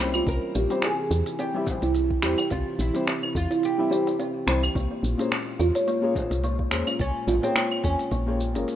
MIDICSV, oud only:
0, 0, Header, 1, 2, 480
1, 0, Start_track
1, 0, Tempo, 560748
1, 232, Time_signature, 4, 2, 24, 8
1, 7497, End_track
2, 0, Start_track
2, 0, Title_t, "Oud"
2, 0, Program_c, 0, 24
2, 244, Note_on_c, 0, 70, 112
2, 718, Note_off_c, 0, 70, 0
2, 721, Note_on_c, 0, 68, 96
2, 1163, Note_off_c, 0, 68, 0
2, 1194, Note_on_c, 0, 67, 91
2, 1879, Note_off_c, 0, 67, 0
2, 2155, Note_on_c, 0, 65, 96
2, 2377, Note_off_c, 0, 65, 0
2, 2400, Note_on_c, 0, 64, 95
2, 2879, Note_off_c, 0, 64, 0
2, 2883, Note_on_c, 0, 65, 95
2, 3122, Note_off_c, 0, 65, 0
2, 3125, Note_on_c, 0, 67, 103
2, 3804, Note_off_c, 0, 67, 0
2, 6000, Note_on_c, 0, 61, 119
2, 6343, Note_off_c, 0, 61, 0
2, 6363, Note_on_c, 0, 60, 109
2, 6687, Note_off_c, 0, 60, 0
2, 6708, Note_on_c, 0, 61, 97
2, 7156, Note_off_c, 0, 61, 0
2, 7497, End_track
0, 0, End_of_file